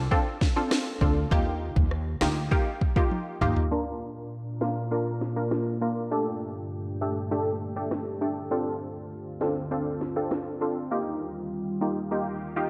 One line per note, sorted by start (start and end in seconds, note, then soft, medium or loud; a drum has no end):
0.11 0.27 C4 medium
0.11 0.27 D4 medium
0.11 0.27 F4 medium
0.11 0.27 A4 loud
0.11 kick loud
0.41 kick loud
0.41 snare medium
0.56 0.98 C4 medium
0.56 0.98 D4 medium
0.56 0.98 F4 medium
0.56 0.98 A4 medium
0.71 cross-stick medium
0.71 snare loud
1.01 1.26 D2 medium
1.01 1.29 C4 medium
1.01 1.29 D4 medium
1.01 1.29 F4 medium
1.01 1.29 A4 medium
1.01 kick loud
1.31 1.68 D#2 loud
1.31 1.86 A#3 medium
1.31 1.87 D#4 medium
1.31 1.87 F4 medium
1.31 1.87 G4 loud
1.31 kick loud
1.76 2.13 D#2 loud
1.76 kick medium
1.91 cross-stick medium
2.21 2.46 D2 medium
2.21 2.37 A#3 medium
2.21 2.37 D#4 medium
2.21 2.37 F4 medium
2.21 2.37 G4 medium
2.21 snare loud
2.51 2.67 A#3 medium
2.51 2.67 D#4 medium
2.51 2.67 F4 medium
2.51 2.67 G4 loud
2.51 kick loud
2.81 kick medium
2.96 3.38 A#3 medium
2.96 3.38 D#4 medium
2.96 3.38 F4 medium
2.96 3.38 G4 medium
2.96 kick loud
3.11 high tom medium
3.41 3.66 D#2 loud
3.41 3.69 A#3 medium
3.41 3.69 D#4 medium
3.41 3.69 F4 medium
3.41 3.69 G4 medium
3.41 mid tom medium
3.56 floor tom medium
3.71 6.09 A#2 medium
3.71 4.26 A#3 medium
3.71 6.09 A#3 medium
3.71 6.09 D4 medium
3.71 4.27 D4 medium
3.71 6.09 F4 medium
3.71 4.27 F4 medium
3.71 4.27 A#4 loud
4.61 4.77 A#3 medium
4.61 4.77 D4 medium
4.61 4.77 F4 medium
4.61 4.77 A#4 medium
4.61 snare loud
4.91 5.07 A#3 medium
4.91 5.07 D4 medium
4.91 5.07 F4 medium
4.91 5.07 A#4 loud
5.21 snare medium
5.36 5.78 A#3 medium
5.36 5.78 D4 medium
5.36 5.78 F4 medium
5.36 5.78 A#4 medium
5.51 cross-stick medium
5.51 snare loud
5.81 6.09 A#3 medium
5.81 6.09 D4 medium
5.81 6.09 F4 medium
5.81 6.09 A#4 medium
6.11 8.49 G2 medium
6.11 10.87 D3 medium
6.11 6.66 A3 medium
6.11 8.49 A3 medium
6.11 6.67 D4 medium
6.11 8.49 G4 medium
6.11 6.67 G4 medium
6.11 6.67 A4 loud
7.01 7.17 A3 medium
7.01 7.17 D4 medium
7.01 7.17 G4 medium
7.01 7.17 A4 medium
7.31 7.47 A3 medium
7.31 7.47 D4 medium
7.31 7.47 G4 medium
7.31 7.47 A4 loud
7.76 8.18 A3 medium
7.76 8.18 D4 medium
7.76 8.18 G4 medium
7.76 8.18 A4 medium
7.91 cross-stick medium
7.91 snare loud
8.21 8.49 A3 medium
8.21 8.49 D4 medium
8.21 8.49 G4 medium
8.21 8.49 A4 medium
8.51 10.89 D2 medium
8.51 9.06 C4 medium
8.51 10.89 C4 medium
8.51 9.06 D4 medium
8.51 12.70 F4 medium
8.51 9.07 F4 medium
8.51 9.07 A4 loud
9.41 9.57 C4 medium
9.41 9.57 D4 medium
9.41 9.57 F4 medium
9.41 9.57 A4 medium
9.41 snare loud
9.71 9.87 C4 medium
9.71 9.87 D4 medium
9.71 9.87 F4 medium
9.71 9.87 A4 loud
10.01 snare medium
10.16 10.58 C4 medium
10.16 10.58 D4 medium
10.16 10.58 F4 medium
10.16 10.58 A4 medium
10.31 cross-stick medium
10.31 snare loud
10.61 10.89 C4 medium
10.61 10.89 D4 medium
10.61 10.89 F4 medium
10.61 10.89 A4 medium
10.91 12.70 D#2 medium
10.91 12.70 D#3 medium
10.91 12.70 G3 medium
10.91 11.46 A#3 medium
10.91 11.46 D#4 medium
10.91 11.47 F4 medium
10.91 11.47 G4 loud
11.81 11.97 A#3 medium
11.81 11.97 D#4 medium
11.81 11.97 F4 medium
11.81 11.97 G4 medium
12.11 12.27 A#3 medium
12.11 12.27 D#4 medium
12.11 12.27 F4 medium
12.11 12.27 G4 loud
12.56 12.70 A#3 medium
12.56 12.70 D#4 medium
12.56 12.70 F4 medium
12.56 12.70 G4 medium